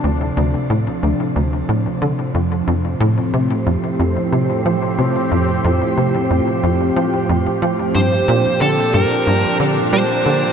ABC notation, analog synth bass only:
X:1
M:4/4
L:1/8
Q:1/4=91
K:F
V:1 name="Analog synth bass" clef=bass
D,, D,, A,, D,, D,, A,, D, F,, | F,, A,, C, F,, F,, C, F, C, | F,, F,, C, F,, F,, F, F,, F, | G,, B,, D, G,, G,, D, G, D, |]